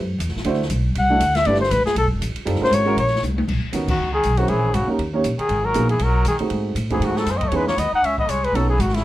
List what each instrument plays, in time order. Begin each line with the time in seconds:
Already playing: upright bass F#2
0.18 upright bass E2, hi-hat pedal, ride
0.27 upright bass C2, snare
0.36 upright bass A1, snare
0.44 upright bass D2, grand piano A3 D4 E4 F#4 C5, ride
0.54 snare
0.62 snare
0.70 upright bass B1, hi-hat pedal, ride
0.95 upright bass C2, flugelhorn F#5, ride
1.10 grand piano A3 D4 E4 F#4 A4
1.20 upright bass D2, hi-hat pedal, ride
1.35 flugelhorn E5, snare, ride
1.45 upright bass G1, grand piano A3 D4 E4 G4 B4, flugelhorn D5, ride
1.54 snare
1.60 flugelhorn C5, snare
1.70 upright bass A1, flugelhorn B4, hi-hat pedal, ride
1.85 flugelhorn G#4, muted upright bass stroke, snare
1.95 upright bass B1, flugelhorn A4, ride
2.04 upright bass G1
2.12 upright bass E1
2.21 upright bass A1, hi-hat pedal, ride
2.36 muted upright bass stroke, ride
2.45 upright bass F#1, grand piano G3 C4 D#4 F4 A4, ride
2.55 snare
2.60 grand piano G#3 C#4 E4 F#4 A#4, flugelhorn C5, muted upright bass stroke
2.65 snare
2.71 upright bass G#1, flugelhorn C#5, hi-hat pedal, ride
2.86 grand piano G#3 C#4 E4 F#4 A#4
2.96 upright bass A#1, flugelhorn C#5, ride
3.07 snare
3.15 snare
3.22 upright bass C2, hi-hat pedal, high tom
3.38 high tom
3.47 upright bass B1, kick, crash
3.63 muted upright bass stroke
3.73 upright bass D#2, grand piano B3 C#4 D#4 F#4 A#4, hi-hat pedal, ride
3.88 trombone D#3, flugelhorn F#4, kick, crash
3.99 upright bass C#2
4.12 trombone D#3, flugelhorn G#4
4.23 upright bass B1, hi-hat pedal, ride
4.37 trombone D#3, grand piano C4 C#4 E4 G#4 A#4, flugelhorn F#4, ride
4.48 upright bass A#1, trombone E3, flugelhorn G#4, ride
4.73 upright bass G#1, trombone C#3, flugelhorn F#4, hi-hat pedal, ride
4.87 grand piano A#3 C#4 D#4 G4 A#4, muted upright bass stroke
4.99 upright bass D#2, ride
5.13 grand piano A#3 C#4 D#4 G4 C#5
5.24 upright bass A#1, hi-hat pedal, ride
5.38 trombone D#3, flugelhorn G#4, muted upright bass stroke, ride
5.49 upright bass G#1, ride
5.64 trombone F#3, flugelhorn A#4
5.74 upright bass A#1, grand piano A#3 B3 D#4 F#4 G#4, hi-hat pedal, ride
5.89 trombone E3, flugelhorn G#4, ride
5.99 upright bass B1, trombone F#3, flugelhorn A#4, ride
6.25 upright bass D#2, trombone D#3, flugelhorn G#4, hi-hat pedal, ride
6.39 grand piano A3 C4 D#4 F#4 G#4, muted upright bass stroke, ride
6.50 upright bass G#2, ride
6.75 upright bass A2, hi-hat pedal, ride
6.90 trombone E3, grand piano A3 C4 D#4 F#4 G#4, flugelhorn G#4, kick, ride
7.00 upright bass G#2, trombone D#3, ride
7.05 flugelhorn F#4
7.14 trombone F#3, flugelhorn A4, snare
7.26 upright bass F#2, trombone G#3, snare, hi-hat pedal, ride
7.31 flugelhorn C5
7.37 trombone C4, flugelhorn D#5, ride
7.41 trombone A3, kick
7.48 upright bass E2, grand piano B3, flugelhorn C#5, ride
7.52 trombone G#3, grand piano C#4 D#4 E4 G#4, flugelhorn B4
7.67 trombone A#3, flugelhorn C#5, snare
7.76 upright bass D#2, trombone B3, flugelhorn D#5, hi-hat pedal, ride
7.92 trombone D#4, flugelhorn F#5, muted upright bass stroke
8.02 upright bass C#2, trombone C#4, flugelhorn E5, ride
8.18 trombone B3, flugelhorn D#5, kick
8.27 upright bass C2, trombone G#3, flugelhorn C#5, hi-hat pedal, ride
8.44 trombone G#3, flugelhorn B4, ride
8.52 upright bass B1, trombone F#3, grand piano B3 C#4 D#4 F#4 A4, flugelhorn A4, ride
8.69 trombone E3, flugelhorn G#4
8.78 upright bass G#1, trombone D#3, flugelhorn F#4, hi-hat pedal, ride
8.89 snare
8.94 trombone C#3, flugelhorn E4, snare, ride